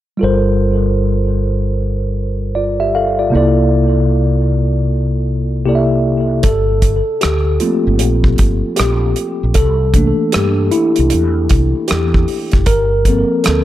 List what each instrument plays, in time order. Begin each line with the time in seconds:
0.17 tine electric piano G3 F4 A4
0.22 fretless electric bass G1, tine electric piano A#4 C5
2.55 tine electric piano F4 D5
2.80 tine electric piano G4 E5
2.95 tine electric piano A4 F5
3.19 tine electric piano F4 D5
3.30 tine electric piano C3 A#3 E4
3.34 fretless electric bass C2, tine electric piano A4 D5
5.65 tine electric piano C3 A#3 E4 G4 A4 D5
5.75 tine electric piano E5
6.43 fretless electric bass G1, tine electric piano A4, kick, closed hi-hat
6.82 kick, closed hi-hat
7.21 fretless electric bass D2, tine electric piano G4, cross-stick, closed hi-hat
7.60 tine electric piano F3 A3 A#3 C4 F4, closed hi-hat
7.87 fretless electric bass G1
7.99 fretless electric bass A#1, closed hi-hat
8.24 kick
8.38 fretless electric bass G1, kick, closed hi-hat
8.76 fretless electric bass A#1, tine electric piano G4, cross-stick, closed hi-hat
9.16 closed hi-hat
9.43 fretless electric bass A#1
9.54 fretless electric bass C2, tine electric piano A4, kick, closed hi-hat
9.94 tine electric piano E3 A3 A#3 D4, kick, closed hi-hat
10.32 fretless electric bass G2, tine electric piano G4, cross-stick, closed hi-hat
10.71 tine electric piano E4, closed hi-hat
10.96 fretless electric bass C2, closed hi-hat
11.10 fretless electric bass E2, closed hi-hat
11.49 fretless electric bass C2, kick, closed hi-hat
11.88 fretless electric bass E2, tine electric piano G4, cross-stick, closed hi-hat
12.14 kick
12.28 open hi-hat
12.52 fretless electric bass F1, kick, closed hi-hat
12.66 fretless electric bass G1, tine electric piano A#4, kick, closed hi-hat
13.05 tine electric piano F3 A#3 C4 A4, kick, closed hi-hat
13.44 fretless electric bass D2, tine electric piano A4, cross-stick, closed hi-hat